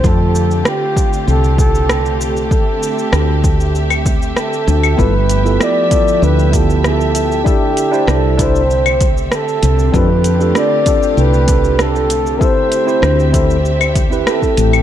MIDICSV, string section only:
0, 0, Header, 1, 2, 480
1, 0, Start_track
1, 0, Tempo, 618557
1, 30, Time_signature, 4, 2, 24, 8
1, 11504, End_track
2, 0, Start_track
2, 0, Title_t, "String section"
2, 0, Program_c, 0, 48
2, 0, Note_on_c, 0, 50, 71
2, 0, Note_on_c, 0, 57, 63
2, 0, Note_on_c, 0, 67, 80
2, 30, Note_on_c, 0, 65, 67
2, 32, Note_on_c, 0, 60, 64
2, 1931, Note_off_c, 0, 65, 0
2, 1945, Note_on_c, 0, 76, 66
2, 3838, Note_off_c, 0, 50, 0
2, 3840, Note_off_c, 0, 60, 0
2, 3863, Note_on_c, 0, 59, 61
2, 3865, Note_on_c, 0, 53, 69
2, 5767, Note_off_c, 0, 59, 0
2, 5768, Note_off_c, 0, 53, 0
2, 5782, Note_on_c, 0, 60, 65
2, 5785, Note_on_c, 0, 50, 70
2, 7677, Note_off_c, 0, 57, 0
2, 7677, Note_off_c, 0, 76, 0
2, 7678, Note_off_c, 0, 67, 0
2, 7702, Note_on_c, 0, 57, 67
2, 7703, Note_on_c, 0, 67, 81
2, 7707, Note_on_c, 0, 65, 69
2, 9595, Note_off_c, 0, 60, 0
2, 9597, Note_off_c, 0, 50, 0
2, 9607, Note_off_c, 0, 67, 0
2, 9610, Note_off_c, 0, 65, 0
2, 9626, Note_on_c, 0, 60, 67
2, 9626, Note_on_c, 0, 67, 79
2, 9626, Note_on_c, 0, 76, 66
2, 9628, Note_on_c, 0, 50, 71
2, 11504, Note_off_c, 0, 50, 0
2, 11504, Note_off_c, 0, 57, 0
2, 11504, Note_off_c, 0, 60, 0
2, 11504, Note_off_c, 0, 67, 0
2, 11504, Note_off_c, 0, 76, 0
2, 11504, End_track
0, 0, End_of_file